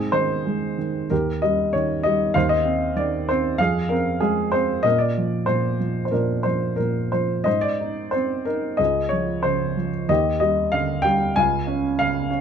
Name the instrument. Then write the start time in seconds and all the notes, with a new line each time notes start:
upright piano
Already playing: G#2 C4 G#4
0.12 D#3 D#4 C5
0.46 G#3
0.78 D#3
1.10 D#2 G4 A#4
1.42 G3 D#5
1.73 D#3 C#5
2.03 G3 D#5
2.34 D#2 C5 F5
2.49 D#5
2.65 C4
2.96 D#3 D5
3.29 C4 C5
3.58 F2 G#4 F5
3.89 C4 A#4
4.21 G#3 G#4
4.52 C4 C5
4.83 A#2 A#4 D#5
4.98 D5
5.17 F3
5.46 A#2 C5
5.80 F3
6.05 C5
6.11 A#2 D4 A#4
6.43 F3 C5
6.76 A#2 A#4
7.12 F3 C5
7.44 G#2 C5 D#5
7.61 D5
7.80 D#4
8.11 C4 C5
8.45 D#4 A#4
8.77 C#2 G#4 D#5
9.09 F3 C#5
9.43 C#3 C5
9.77 F3
10.09 D#2 G4 D#5
10.40 G3 D#5
10.72 D3 F5
11.02 G3 G5
11.36 C#2 F5 G#5
11.67 C#4
11.99 C#3 F5
12.30 C#4